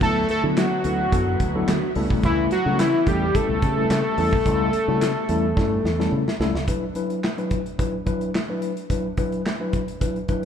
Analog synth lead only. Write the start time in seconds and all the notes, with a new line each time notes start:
0.02 A4
0.30 A4
0.58 F#4
2.25 E4
2.52 F#4
2.80 E4
3.08 G4
3.35 A4